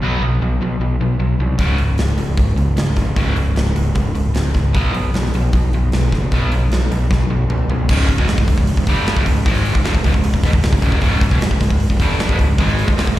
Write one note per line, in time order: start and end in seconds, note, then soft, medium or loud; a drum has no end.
0.01 0.17 B1 medium
0.01 0.20 B2 medium
0.01 0.21 F#3 medium
0.01 0.21 B3 loud
0.21 0.37 B1 medium
0.21 0.40 B2 medium
0.21 0.40 F#3 medium
0.41 0.57 B1 medium
0.41 0.59 B2 medium
0.41 0.59 F#3 medium
0.60 0.76 B1 medium
0.60 0.79 B2 medium
0.60 0.79 F#3 medium
0.80 0.96 B1 medium
0.80 0.99 B2 medium
0.80 0.99 F#3 medium
1.00 1.16 B1 medium
1.00 1.18 B2 medium
1.00 1.18 F#3 medium
1.19 1.36 B1 medium
1.19 1.37 B2 medium
1.19 1.38 F#3 medium
1.39 1.55 C2 medium
1.39 1.58 B2 medium
1.39 1.58 F#3 medium
1.58 1.75 C#1 medium
1.58 1.77 C#2 medium
1.58 1.78 G#2 medium
1.58 1.78 C#3 medium
1.58 kick medium
1.58 open hi-hat medium
1.77 1.94 C#1 medium
1.77 1.97 C#2 soft
1.77 1.97 G#2 medium
1.77 open hi-hat soft
1.98 2.14 C#1 medium
1.98 2.17 C#2 medium
1.98 2.17 G#2 medium
1.98 snare medium
1.98 open hi-hat medium
2.17 2.34 C#1 medium
2.17 2.36 C#2 medium
2.17 2.36 G#2 medium
2.17 open hi-hat soft
2.37 2.54 C#1 medium
2.37 2.55 C#2 medium
2.37 2.56 G#2 medium
2.37 kick loud
2.37 open hi-hat medium
2.56 2.73 C#1 medium
2.56 2.75 C#2 medium
2.56 2.75 G#2 medium
2.56 open hi-hat soft
2.76 2.93 C#1 medium
2.76 2.95 C#2 medium
2.76 2.95 G#2 medium
2.76 snare loud
2.76 open hi-hat medium
2.96 3.13 G#1 medium
2.96 3.15 C#2 medium
2.96 3.15 G#2 medium
2.96 kick medium
2.96 snare soft
2.96 open hi-hat soft
3.16 3.32 C#1 medium
3.16 3.35 C#2 medium
3.16 3.35 G#2 medium
3.16 3.36 C#3 medium
3.16 kick medium
3.16 open hi-hat medium
3.35 3.52 C#1 medium
3.35 3.54 C#2 medium
3.35 3.54 G#2 medium
3.35 open hi-hat medium
3.55 3.72 C#1 medium
3.55 3.74 C#2 medium
3.55 3.74 G#2 medium
3.55 snare medium
3.55 open hi-hat medium
3.67 snare soft
3.75 3.92 C#1 medium
3.75 3.94 C#2 medium
3.75 3.94 G#2 medium
3.75 open hi-hat medium
3.95 4.11 C#1 medium
3.95 4.13 C#2 medium
3.95 4.13 G#2 medium
3.95 kick medium
3.95 open hi-hat medium
4.15 4.31 C#1 medium
4.15 4.33 C#2 medium
4.15 4.33 G#2 medium
4.15 open hi-hat medium
4.34 4.51 C#1 medium
4.34 4.52 C#2 medium
4.34 4.53 G#2 medium
4.34 snare medium
4.34 open hi-hat medium
4.54 4.71 C#1 medium
4.54 4.72 C#2 medium
4.54 4.73 G#2 medium
4.54 kick medium
4.54 snare soft
4.54 open hi-hat soft
4.73 4.91 B1 medium
4.73 4.92 B2 medium
4.73 4.93 F#3 medium
4.73 4.93 B3 loud
4.73 kick loud
4.73 open hi-hat medium
4.93 5.11 B1 medium
4.93 5.12 B2 medium
4.93 5.12 F#3 medium
4.93 open hi-hat soft
5.14 5.30 B1 medium
5.14 5.32 B2 medium
5.14 5.32 F#3 medium
5.14 snare medium
5.14 open hi-hat medium
5.25 snare soft
5.33 5.49 B1 medium
5.33 5.52 B2 medium
5.33 5.52 F#3 medium
5.33 open hi-hat soft
5.53 5.69 B1 medium
5.53 5.72 B2 medium
5.53 5.72 F#3 medium
5.53 kick medium
5.53 open hi-hat medium
5.73 5.89 B1 medium
5.73 5.91 B2 medium
5.73 5.92 F#3 medium
5.73 open hi-hat soft
5.92 6.09 B1 medium
5.92 6.11 B2 medium
5.92 6.11 F#3 medium
5.92 snare medium
5.92 open hi-hat medium
6.12 6.28 F#1 medium
6.12 6.31 B2 medium
6.12 6.31 F#3 medium
6.12 kick medium
6.12 snare soft
6.12 open hi-hat soft
6.31 6.48 B1 medium
6.31 6.51 B2 medium
6.31 6.51 F#3 medium
6.31 6.52 B3 medium
6.31 kick medium
6.31 open hi-hat medium
6.51 6.67 B1 medium
6.51 6.70 B2 medium
6.51 6.70 F#3 medium
6.51 open hi-hat medium
6.71 6.87 B1 medium
6.71 6.90 B2 medium
6.71 6.90 F#3 medium
6.71 snare medium
6.71 open hi-hat medium
6.91 7.07 B1 medium
6.91 7.09 B2 medium
6.91 7.09 F#3 medium
6.91 open hi-hat medium
7.11 7.27 B1 medium
7.11 7.29 B2 medium
7.11 7.29 F#3 medium
7.11 kick medium
7.11 snare medium
7.30 7.46 B1 medium
7.30 7.48 B2 medium
7.30 7.48 F#3 medium
7.48 7.65 B1 medium
7.48 7.68 B2 medium
7.48 7.68 F#3 medium
7.48 mid tom medium
7.68 7.85 B1 medium
7.68 7.88 B2 medium
7.68 7.88 F#3 medium
7.68 floor tom medium
7.89 8.07 C#1 loud
7.89 8.08 C#2 medium
7.89 8.08 G#2 medium
7.89 8.09 C#3 loud
7.89 kick loud
7.89 crash loud
8.00 snare soft
8.08 8.18 C#1 medium
8.08 8.17 C#2 medium
8.08 8.18 G#2 medium
8.08 kick medium
8.08 open hi-hat medium
8.18 8.28 B1 medium
8.18 8.27 B2 medium
8.18 8.28 F#3 loud
8.18 kick medium
8.28 8.37 C#1 medium
8.28 8.37 C#2 medium
8.28 8.37 G#2 medium
8.28 snare medium
8.28 open hi-hat medium
8.38 8.47 C#1 medium
8.38 8.47 C#2 medium
8.38 8.47 G#2 medium
8.38 kick loud
8.48 8.57 C#1 medium
8.48 8.57 C#2 medium
8.48 8.58 G#2 medium
8.48 kick medium
8.48 open hi-hat medium
8.58 8.76 C#1 medium
8.58 8.74 C#2 medium
8.58 8.74 G#2 medium
8.58 kick medium
8.67 open hi-hat medium
8.77 8.86 C#1 medium
8.77 8.87 C#2 medium
8.77 8.88 G#2 medium
8.77 kick medium
8.87 9.14 G1 medium
8.87 9.16 G2 medium
8.87 9.17 D3 medium
8.87 9.17 G3 loud
8.87 kick medium
8.87 open hi-hat medium
9.07 snare loud
9.07 open hi-hat medium
9.16 9.26 C#1 medium
9.16 9.25 C#2 medium
9.16 9.26 G#2 medium
9.16 kick loud
9.26 9.45 C#1 medium
9.26 9.42 C#2 medium
9.26 9.42 G#2 medium
9.26 kick medium
9.26 open hi-hat medium
9.45 9.73 G#1 medium
9.45 9.73 G#2 medium
9.45 9.74 D#3 medium
9.45 9.75 G#3 loud
9.45 kick loud
9.45 open hi-hat medium
9.57 snare soft
9.65 open hi-hat medium
9.74 9.83 C#1 medium
9.74 9.84 C#2 medium
9.74 9.84 G#2 medium
9.74 kick medium
9.84 9.93 G1 loud
9.84 9.94 G2 loud
9.84 9.94 D3 loud
9.84 snare loud
9.84 open hi-hat medium
9.94 10.04 C#1 medium
9.94 10.03 C#2 medium
9.94 10.04 G#2 medium
9.94 kick medium
10.04 10.13 C#1 medium
10.04 10.13 C#2 loud
10.04 10.13 G#2 loud
10.04 kick medium
10.04 open hi-hat medium
10.14 10.32 C#1 medium
10.14 10.30 C#2 medium
10.14 10.30 G#2 medium
10.14 kick medium
10.24 open hi-hat medium
10.33 10.43 C#1 medium
10.33 10.43 C#2 medium
10.33 10.44 G#2 medium
10.33 kick medium
10.43 10.53 E1 medium
10.43 10.52 E2 medium
10.43 10.52 B2 medium
10.43 kick medium
10.43 open hi-hat medium
10.52 10.71 C#1 medium
10.52 10.69 C#2 medium
10.52 10.69 G#2 medium
10.52 kick medium
10.63 snare loud
10.63 open hi-hat medium
10.72 10.81 C#1 medium
10.72 10.80 C#2 medium
10.72 10.81 G#2 medium
10.72 kick medium
10.81 10.92 C#1 loud
10.81 10.91 C#2 medium
10.81 10.90 G#2 medium
10.81 kick medium
10.81 open hi-hat medium
10.91 11.01 G#1 loud
10.91 11.00 G#2 medium
10.91 11.01 D#3 medium
10.91 kick medium
11.01 11.20 C#1 loud
11.01 11.20 C#2 loud
11.01 11.21 G#2 loud
11.01 11.21 C#3 loud
11.01 kick loud
11.01 open hi-hat medium
11.21 11.31 C#1 medium
11.21 11.31 C#2 medium
11.21 11.32 G#2 medium
11.21 kick loud
11.21 open hi-hat medium
11.31 11.41 B1 medium
11.31 11.40 B2 medium
11.31 11.41 F#3 medium
11.31 kick medium
11.41 11.50 C#1 medium
11.41 11.50 C#2 medium
11.41 11.50 G#2 loud
11.41 snare loud
11.41 open hi-hat medium
11.51 11.60 C#1 medium
11.51 11.59 C#2 medium
11.51 11.60 G#2 medium
11.51 kick medium
11.60 11.70 C#1 medium
11.60 11.69 C#2 medium
11.60 11.69 G#2 medium
11.60 kick loud
11.60 snare soft
11.60 open hi-hat medium
11.70 11.89 C#1 medium
11.70 11.86 C#2 medium
11.70 11.86 G#2 medium
11.70 kick medium
11.80 open hi-hat medium
11.90 11.99 C#1 medium
11.90 12.00 C#2 medium
11.90 12.01 G#2 medium
11.90 kick medium
12.00 12.27 G1 medium
12.00 12.29 G2 medium
12.00 12.29 D3 medium
12.00 12.30 G3 medium
12.00 kick medium
12.00 open hi-hat medium
12.19 snare loud
12.19 open hi-hat medium
12.29 12.38 C#1 loud
12.29 12.38 C#2 medium
12.29 12.38 G#2 loud
12.29 kick loud
12.39 12.57 C#1 medium
12.39 12.55 C#2 medium
12.39 12.55 G#2 medium
12.39 kick medium
12.39 open hi-hat medium
12.58 12.86 G#1 loud
12.58 12.87 G#2 medium
12.58 12.88 D#3 medium
12.58 12.88 G#3 loud
12.58 kick loud
12.58 open hi-hat medium
12.79 open hi-hat medium
12.88 12.96 C#1 medium
12.88 12.96 C#2 medium
12.88 12.97 G#2 medium
12.88 kick loud
12.97 13.06 G1 medium
12.97 13.07 G2 loud
12.97 13.07 D3 loud
12.97 snare loud
12.97 open hi-hat medium
13.07 13.16 C#1 medium
13.07 13.16 C#2 medium
13.07 13.17 G#2 medium
13.07 kick medium